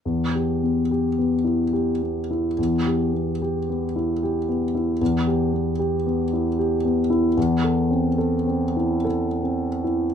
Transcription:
0.05 E2
0.35 G4
0.63 B3
0.91 G4
1.19 B3
1.44 E4
1.73 G4
2.02 B3
2.31 E4
2.58 E2
2.86 G4
3.14 B3
3.42 G4
3.69 B3
3.96 E4
4.23 G4
4.49 B3
4.75 E4
5.01 E2
5.27 G4
5.53 B3
5.79 G4
6.06 B3
6.33 E4
6.59 G4
6.85 B3
7.10 E4
7.37 E2
7.64 A4
7.91 C4
8.18 A4
8.47 C4
8.77 E4
9.05 A4
9.43 C4
9.84 E4

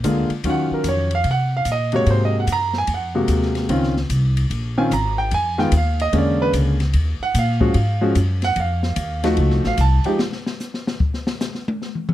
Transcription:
0.04 D2 D3 G#3 A#3 F4, kick, hi-hat pedal, ride
0.30 muted upright bass stroke, ride
0.44 D#2 D#3 F#3 C#4 F4, kick, ride
0.50 F#5
0.71 A#4, muted upright bass stroke
0.84 F2, kick, hi-hat pedal, ride
0.89 C#5
1.11 ride
1.15 F5
1.24 C3, kick, ride
1.31 F#5
1.57 F5
1.65 A#2, kick, hi-hat pedal, ride
1.72 D#5
1.92 C3 G#3 A#3 F#4 C#5, ride
2.06 G#2, kick, ride
2.11 C5
2.25 D#5
2.40 F#5
2.47 F#2, kick, hi-hat pedal, ride
2.52 A#5
2.73 snare
2.78 G#5
2.87 F2, kick, ride
2.94 F#5
3.15 C3 G#3 A#3 F#4
3.28 D#2, kick, hi-hat pedal, ride
3.42 snare
3.55 snare, ride
3.69 C#2 D#3 C4 C#4 F4, kick, ride
3.83 snare
3.97 snare
4.10 C2, kick, hi-hat pedal, ride
4.37 ride
4.50 A#1, kick, ride
4.78 D#3 C4 C#4 F4 G#5
4.91 G#1 A#5, kick, hi-hat pedal, ride
5.18 G5
5.31 F2 G#5, kick, ride
5.58 D#3 G#3 B3 F4 G5, snare
5.72 D#2, kick, hi-hat pedal, ride
5.77 F5
6.00 D#5, ride
6.13 E2 D3 G#3 A#3 C#4, kick, ride
6.18 D5
6.42 B4
6.53 C#2, kick, hi-hat pedal, ride
6.80 snare, ride
6.93 D#2, kick, ride
7.20 F#5, muted upright bass stroke
7.34 A#2, kick, hi-hat pedal, ride
7.39 F5
7.60 F3 G#3 C#4 F#4, kick
7.74 G#2, kick, ride
8.01 F3 G#3 C#4 F#4
8.15 F#2, kick, hi-hat pedal, ride
8.42 F#5, snare, ride
8.56 F2, kick, ride
8.60 F5
8.83 snare
8.96 D#2, kick, hi-hat pedal, ride
9.24 F3 A3 D#4 F#4, snare, ride
9.37 C#2, kick, ride
9.50 C2, snare
9.64 A1 F5, snare
9.77 C2 A5, kick, hi-hat pedal, ride
10.04 F3 G#3 D#4 G4, ride
10.19 snare
10.32 snare
10.46 snare
10.60 snare, hi-hat pedal
10.74 snare
10.87 snare
11.00 kick
11.14 snare
11.27 snare
11.41 snare, hi-hat pedal
11.55 snare
11.68 high tom
11.82 snare
11.95 mid tom
12.09 mid tom

